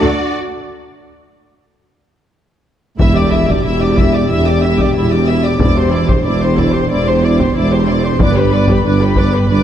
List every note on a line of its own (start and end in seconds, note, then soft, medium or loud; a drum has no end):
0.00 0.10 D2 medium
0.00 0.10 F#3 soft
0.00 0.10 A3 soft
0.00 0.32 D4 medium
0.00 0.08 D4 soft
0.00 0.32 F#4 medium
0.00 0.34 D5 medium
2.99 3.57 E1 medium
2.99 3.57 E1 soft
2.99 3.57 E2 soft
2.99 8.16 D4 soft
2.99 3.14 E4 soft
2.99 5.57 G4 soft
2.99 3.15 E5 soft
2.99 3.15 E6 soft
2.99 taiko medium
2.99 sub drop medium
3.15 3.32 G4 soft
3.15 3.32 D5 soft
3.15 3.33 D6 soft
3.31 3.48 E4 soft
3.31 3.48 E5 soft
3.31 3.49 E6 soft
3.48 3.65 G4 soft
3.48 3.65 D5 soft
3.48 3.65 D6 soft
3.48 taiko medium
3.64 4.22 E1 medium
3.64 4.22 E1 soft
3.64 4.22 E2 soft
3.64 3.79 E4 soft
3.64 3.80 E5 soft
3.64 3.80 E6 soft
3.81 3.97 G4 soft
3.81 3.97 D5 soft
3.81 3.98 D6 soft
3.98 4.14 E4 soft
3.98 4.14 E5 soft
3.98 4.14 E6 soft
3.98 taiko medium
4.14 4.30 G4 soft
4.14 4.30 D5 soft
4.14 4.30 D6 soft
4.29 4.87 E1 soft
4.29 4.87 E1 medium
4.29 4.87 E2 medium
4.29 4.45 E4 soft
4.29 4.46 E5 soft
4.29 4.44 E6 soft
4.46 4.62 G4 soft
4.46 4.63 D5 soft
4.46 4.62 D6 soft
4.62 4.79 E4 soft
4.62 4.79 E5 soft
4.62 4.78 E6 soft
4.78 4.95 G4 soft
4.78 4.96 D5 soft
4.78 4.94 D6 soft
4.78 taiko medium
4.94 5.52 E1 soft
4.94 5.53 E1 soft
4.94 5.52 E2 soft
4.94 5.11 E4 soft
4.94 5.10 E5 soft
4.94 5.10 E6 soft
5.10 5.28 G4 soft
5.10 5.27 D5 soft
5.10 5.27 D6 soft
5.27 5.45 E4 soft
5.27 5.44 E5 soft
5.27 5.43 E6 soft
5.43 5.60 G4 soft
5.43 5.58 D5 soft
5.43 5.60 D6 soft
5.59 6.17 E1 soft
5.59 6.18 E1 soft
5.59 6.17 E2 medium
5.59 5.76 E4 soft
5.59 8.20 C5 soft
5.59 5.74 D5 soft
5.59 5.76 D6 soft
5.59 taiko medium
5.77 5.93 G4 soft
5.77 5.93 C5 soft
5.77 5.93 C6 soft
5.91 6.09 E4 soft
5.91 6.08 D5 soft
5.91 6.09 D6 soft
6.08 6.25 G4 soft
6.08 6.24 C5 soft
6.08 6.26 C6 soft
6.08 taiko medium
6.24 6.82 E1 medium
6.24 6.83 E1 medium
6.24 6.82 E2 medium
6.24 6.40 E4 soft
6.24 6.40 D5 soft
6.24 6.40 D6 soft
6.41 6.57 G4 soft
6.41 6.57 C5 soft
6.41 6.58 C6 soft
6.57 6.73 E4 soft
6.57 6.74 D5 soft
6.57 6.74 D6 soft
6.57 taiko medium
6.73 6.90 G4 soft
6.73 6.89 C5 soft
6.73 6.90 C6 soft
6.90 7.47 E1 soft
6.90 7.48 E1 medium
6.90 7.47 E2 medium
6.90 7.05 E4 soft
6.90 7.05 D5 soft
6.90 7.06 D6 soft
7.07 7.22 G4 soft
7.07 7.23 C5 soft
7.07 7.23 C6 soft
7.23 7.39 E4 soft
7.23 7.39 D5 soft
7.23 7.40 D6 soft
7.39 7.55 G4 soft
7.39 7.55 C5 soft
7.39 7.56 C6 soft
7.39 taiko medium
7.54 8.11 E1 medium
7.54 8.12 E1 medium
7.54 8.11 E2 medium
7.54 7.70 E4 soft
7.54 7.70 D5 soft
7.54 7.71 D6 soft
7.71 7.87 G4 soft
7.71 7.87 C5 soft
7.71 7.89 C6 soft
7.87 8.04 E4 soft
7.87 8.03 D5 soft
7.87 8.05 D6 soft
8.03 8.19 G4 soft
8.03 8.20 C5 soft
8.03 8.20 C6 soft
8.18 8.76 G1 medium
8.18 8.77 G1 soft
8.18 8.75 G2 medium
8.18 9.12 G2 medium
8.18 9.63 D4 medium
8.18 9.63 B4 medium
8.18 8.35 B4 soft
8.18 8.35 D5 soft
8.18 taiko medium
8.23 8.36 D6 soft
8.36 8.52 G4 soft
8.36 8.52 B4 soft
8.36 8.53 B5 soft
8.52 8.67 B4 soft
8.52 8.68 D5 soft
8.52 8.69 D6 soft
8.67 8.84 G4 soft
8.67 8.85 B4 soft
8.67 taiko medium
8.73 8.86 B5 soft
8.83 9.31 G1 medium
8.83 9.41 G1 medium
8.83 9.40 G2 medium
8.83 8.99 B4 soft
8.83 9.00 D5 soft
8.88 9.01 D6 soft
9.02 9.17 G4 soft
9.02 9.17 B4 soft
9.02 9.17 B5 soft
9.16 9.33 B4 soft
9.16 9.33 D5 soft
9.16 taiko medium
9.20 9.34 D6 soft
9.32 9.48 G4 soft
9.32 9.49 B4 soft
9.36 9.50 B5 soft
9.47 9.63 G1 medium
9.47 9.63 G2 medium
9.47 9.63 B4 soft
9.47 9.63 D5 soft
9.53 9.63 D6 soft